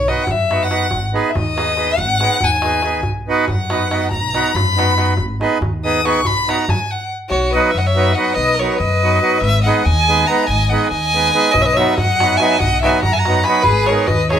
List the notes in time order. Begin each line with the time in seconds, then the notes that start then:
Already playing: B1
0.08 B3 D#4 F#4 B4 D#5, darbuka tek
0.18 darbuka tek
0.22 F#5
0.27 F#2 E5, darbuka dum
0.50 B3 D#4 F#4 B4, darbuka tek
0.61 F#5, darbuka tek
0.70 B3 D#4 F#4 B4, darbuka tek
0.91 G#1, darbuka dum
1.13 B3 D#4 G#4 B4, darbuka tek
1.26 E5, darbuka tek
1.35 D#2 D#5, darbuka dum
1.56 B3 D#4 G#4 B4, darbuka tek
1.68 darbuka tek
1.77 B3 D#4 G#4 B4, darbuka tek
1.97 G#1 F#5, darbuka dum
2.09 darbuka tek
2.21 B3 D#4 G#4 B4, darbuka tek
2.41 D#2 G#5, darbuka dum
2.52 darbuka tek
2.62 B3 D#4 G#4 B4, darbuka tek
2.73 darbuka tek
2.82 B3 D#4 G#4 B4, darbuka tek
2.93 darbuka tek
3.03 B1, darbuka dum
3.27 B3 D#4 F#4 B4
3.43 G#5
3.48 F#2 F#5, darbuka dum
3.70 B3 D#4 F#4 B4, darbuka tek
3.81 darbuka tek
3.90 B3 D#4 F#4 B4, darbuka tek
4.11 B1 A#5, darbuka dum
4.34 B3 D#4 F#4 B4, darbuka tek
4.46 darbuka tek
4.54 F#2 B5, darbuka dum
4.76 B3 D#4 F#4 B4, darbuka tek
4.96 B3 D#4 F#4 B4, darbuka tek
5.17 G#1, darbuka dum
5.40 B3 D#4 G#4 B4, darbuka tek
5.52 darbuka tek
5.61 D#2, darbuka dum
5.84 B3 D#4 G#4 B4 D#6
5.95 darbuka tek
6.03 B3 D#4 G#4 B4 C#6, darbuka tek
6.23 B1 B5, darbuka dum
6.48 B3 D#4 F#4 B4 A#5, darbuka tek
6.59 darbuka tek
6.68 F#2 G#5, darbuka dum
6.91 F#5
7.29 B1 F#4 C#5
7.51 F#3 B3 D#4 F#4 B4 D#5
7.55 B4
7.71 B4 E5
7.75 F#2 F#5
7.79 D#5
7.86 C#5 E5
7.95 F#3 B3 D#4 F#4 B4
8.12 F#3 D#5 F#5
8.17 B3 D#4 F#4 B4
8.34 B1 B4 D#5
8.54 A#4
8.59 F#3 B3 D#4 F#4 B4 C#5
8.75 B4 D#5
8.80 F#2
9.02 F#3 B3 D#4 F#4 B4
9.21 F#3 B3 D#4 F#4 B4
9.37 G#1 B4 E5
9.61 D#5 F#5
9.66 G#3 B3 D#4 G#4 B4
9.79 D#5
9.85 D#2 G#5
10.08 G#3 B3 D#4 G#4 B4
10.25 G#3 B3 D#4 G#4 F#5 A#5
10.30 B4
10.44 D#5 G#5
10.48 G#1
10.68 G#3 B3 D#4 D#5 F#5
10.73 G#4 B4
10.88 D#2 D#5 G#5
11.13 G#3 B3 D#4 G#4 B4
11.33 G#3 B3 D#4 G#4 B4
11.51 B1 B4 D#5, darbuka dum
11.61 B4 C#5 E5
11.66 D#5, darbuka tek
11.73 C#5 E5, darbuka tek
11.77 F#3 B3 D#4 F#4 B4
11.93 D#5 F#5
11.98 F#2, darbuka dum
12.20 F#3 B3 D#4 F#4 B4, darbuka tek
12.36 F#3 B3 E5 G#5, darbuka tek
12.40 D#4 F#4 B4
12.56 D#5 F#5
12.60 B1, darbuka dum
12.73 darbuka tek
12.81 F#3 B3 D#4 F#4 E5 G#5, darbuka tek
12.85 B4
13.01 F#2 F#5 A#5, darbuka dum
13.12 E5 G#5
13.16 F#5 A#5
13.25 F#3 B3 D#4 F#4 B4, darbuka tek
13.44 F#3 G#5 B5, darbuka tek
13.48 B3 D#4 F#4 B4
13.62 G#4 B4, darbuka dum
13.66 G#1
13.76 darbuka tek
13.86 G#3 A#4 C#5, darbuka tek
13.91 B3 D#4 G#4 B4
14.07 D#2 B4 D#5, darbuka dum
14.29 G#3 G#4 C#5, darbuka tek
14.33 B3 D#4 G#4 B4